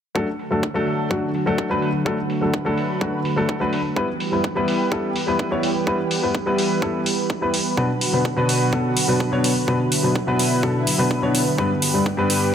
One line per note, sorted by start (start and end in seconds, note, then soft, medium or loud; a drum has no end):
0.15 3.93 D3 medium
0.15 0.26 F#3 medium
0.15 3.93 F#3 medium
0.15 0.26 A3 medium
0.15 3.93 A3 medium
0.15 0.26 D4 medium
0.15 3.93 F#4 medium
0.15 2.04 A4 medium
0.15 0.27 A4 medium
0.15 kick loud
0.39 open hi-hat medium
0.51 0.62 F#3 medium
0.51 0.62 A3 medium
0.51 0.62 D4 medium
0.51 0.62 A4 medium
0.63 kick loud
0.74 1.08 F#3 medium
0.74 1.08 A3 medium
0.74 1.08 D4 medium
0.74 1.08 A4 medium
0.87 open hi-hat medium
1.10 1.28 F#3 medium
1.10 1.28 A3 medium
1.10 1.28 D4 medium
1.10 1.28 F#4 medium
1.10 kick loud
1.35 open hi-hat medium
1.46 1.67 F#3 medium
1.46 1.67 A3 medium
1.46 1.68 D4 medium
1.46 1.68 A4 medium
1.58 kick loud
1.70 1.87 F#3 medium
1.70 1.87 A3 medium
1.70 1.88 D4 medium
1.70 1.88 B4 loud
1.82 open hi-hat medium
2.05 2.16 F#3 medium
2.05 2.17 A3 medium
2.05 2.17 D4 medium
2.05 2.17 A4 medium
2.05 3.95 B4 medium
2.05 kick loud
2.30 open hi-hat loud
2.41 2.52 F#3 medium
2.41 2.52 A3 medium
2.41 2.53 D4 medium
2.41 2.53 A4 medium
2.54 kick loud
2.65 2.98 F#3 medium
2.65 2.98 A3 medium
2.65 2.98 D4 medium
2.65 2.99 A4 medium
2.77 open hi-hat medium
3.01 3.18 F#3 medium
3.01 3.18 A3 medium
3.01 3.19 D4 medium
3.01 3.19 F#4 medium
3.01 kick loud
3.25 open hi-hat loud
3.36 3.58 F#3 medium
3.36 3.58 A3 medium
3.36 3.58 D4 medium
3.36 3.58 A4 medium
3.49 kick loud
3.60 3.78 F#3 medium
3.60 3.78 A3 medium
3.60 3.78 D4 medium
3.60 3.78 B4 medium
3.73 open hi-hat loud
3.96 7.74 E3 medium
3.96 4.07 G3 medium
3.96 7.74 G3 medium
3.96 4.07 B3 medium
3.96 7.74 B3 medium
3.96 4.07 E4 medium
3.96 7.74 G4 medium
3.96 12.55 B4 medium
3.96 4.08 B4 medium
3.96 kick loud
4.20 open hi-hat loud
4.32 4.43 G3 medium
4.32 4.43 B3 medium
4.32 4.43 E4 medium
4.32 4.43 B4 medium
4.44 kick loud
4.55 4.89 G3 medium
4.55 4.89 B3 medium
4.55 4.89 E4 medium
4.55 4.89 B4 loud
4.68 open hi-hat loud
4.91 5.09 G3 medium
4.91 5.09 B3 medium
4.91 5.09 E4 medium
4.91 5.09 A4 medium
4.91 kick loud
5.16 open hi-hat loud
5.27 5.48 G3 medium
5.27 5.48 B3 medium
5.27 5.49 E4 medium
5.27 5.49 B4 medium
5.39 kick loud
5.51 5.68 G3 medium
5.51 5.68 B3 medium
5.51 5.69 E4 medium
5.51 5.69 C#5 loud
5.63 open hi-hat loud
5.86 5.97 G3 medium
5.86 5.98 B3 medium
5.86 5.98 E4 medium
5.86 5.98 B4 medium
5.86 kick loud
6.11 open hi-hat loud
6.22 6.33 G3 medium
6.22 6.33 B3 medium
6.22 6.34 E4 medium
6.22 6.34 B4 medium
6.35 kick loud
6.46 6.79 G3 medium
6.46 6.79 B3 medium
6.46 6.79 E4 medium
6.46 6.80 B4 medium
6.58 open hi-hat loud
6.82 6.99 G3 medium
6.82 6.99 B3 medium
6.82 7.00 E4 medium
6.82 7.00 A4 medium
6.82 kick loud
7.06 open hi-hat loud
7.30 kick loud
7.41 7.52 G3 medium
7.41 7.52 B3 medium
7.41 7.53 E4 medium
7.41 7.53 B4 medium
7.54 open hi-hat loud
7.77 7.88 B2 medium
7.77 12.55 D3 medium
7.77 7.88 F#3 medium
7.77 11.55 F#3 medium
7.77 12.55 B3 medium
7.77 7.88 B3 medium
7.77 7.88 D4 medium
7.77 9.66 F#4 medium
7.77 7.89 B4 medium
7.77 kick loud
8.01 open hi-hat medium
8.13 8.24 B2 medium
8.13 8.24 F#3 medium
8.13 8.24 B3 medium
8.13 8.24 D4 medium
8.13 8.24 B4 medium
8.25 kick loud
8.36 8.70 B2 medium
8.36 8.70 F#3 medium
8.36 8.70 B3 medium
8.36 8.70 D4 medium
8.36 8.70 B4 loud
8.49 open hi-hat medium
8.72 8.90 B2 medium
8.72 8.90 F#3 medium
8.72 8.90 B3 medium
8.72 8.90 D4 medium
8.72 8.90 A4 medium
8.72 kick loud
8.97 open hi-hat loud
9.08 9.29 B2 medium
9.08 9.29 F#3 medium
9.08 9.29 B3 medium
9.08 9.30 D4 medium
9.08 9.30 B4 medium
9.20 kick loud
9.32 9.49 B2 medium
9.32 9.49 F#3 medium
9.32 9.49 B3 medium
9.32 9.50 D4 medium
9.32 9.50 C#5 loud
9.44 open hi-hat loud
9.67 9.78 B2 medium
9.67 9.79 F#3 medium
9.67 9.79 B3 medium
9.67 9.79 D4 medium
9.67 11.57 E4 medium
9.67 9.79 B4 medium
9.67 kick loud
9.92 open hi-hat medium
10.03 10.14 B2 medium
10.03 10.14 F#3 medium
10.03 10.14 B3 medium
10.03 10.15 D4 medium
10.03 10.15 B4 medium
10.16 kick loud
10.27 10.60 B2 medium
10.27 10.60 F#3 medium
10.27 10.60 B3 medium
10.27 10.60 D4 medium
10.27 10.61 B4 loud
10.39 open hi-hat medium
10.63 10.80 B2 medium
10.63 10.80 F#3 medium
10.63 10.80 B3 medium
10.63 10.81 D4 medium
10.63 10.81 A4 medium
10.63 kick loud
10.87 open hi-hat loud
10.98 11.20 B2 medium
10.98 11.20 F#3 medium
10.98 11.20 B3 medium
10.98 11.20 D4 medium
10.98 11.20 B4 medium
11.11 kick loud
11.22 11.40 B2 medium
11.22 11.40 F#3 medium
11.22 11.40 B3 medium
11.22 11.40 D4 medium
11.22 11.40 C#5 loud
11.35 open hi-hat medium
11.58 11.69 G2 medium
11.58 11.69 G3 medium
11.58 12.55 G3 medium
11.58 11.69 B3 medium
11.58 11.69 D4 medium
11.58 12.55 G4 medium
11.58 11.69 B4 medium
11.58 kick loud
11.82 open hi-hat medium
11.94 12.05 G2 medium
11.94 12.05 G3 medium
11.94 12.05 B3 medium
11.94 12.05 D4 medium
11.94 12.05 B4 medium
12.06 kick loud
12.17 12.50 G2 medium
12.17 12.51 G3 medium
12.17 12.51 B3 medium
12.17 12.51 D4 medium
12.17 12.51 B4 loud
12.30 open hi-hat medium